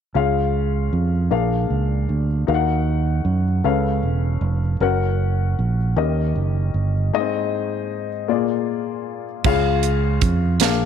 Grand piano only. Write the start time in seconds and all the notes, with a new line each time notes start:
0.14 C#3 C#4 F4 G#4 F5
1.31 A#2 D4 G#4 A#4 F5
2.47 D#3 D#4 F#4 A#4 F5
2.54 F#5
3.64 C#3 C#4 A4 B4 F5
4.81 C#4 F#4 A#4 F#5
5.96 D#3 C#4 G4 A#4 D#5
7.13 G#2 A#3 D#4 G#4 D#5
7.20 C4
8.28 A#2 A#3 F4 G#4 D5
9.45 C#3 C#4 F4 G#4 F5
10.61 A#2 D4 G#4 A#4 F5